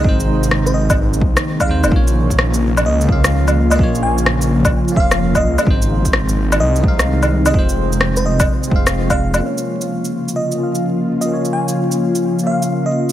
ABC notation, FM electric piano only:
X:1
M:4/4
L:1/16
Q:"Swing 16ths" 1/4=128
K:Bbm
V:1 name="FM electric piano"
e z4 c e2 z4 z f3 | z8 e4 z3 e- | e z a2 z6 f3 e3 | z8 e4 z3 e |
z4 z c e2 z4 z f3 | z8 e4 z3 e- | e z a2 z6 f3 e3 |]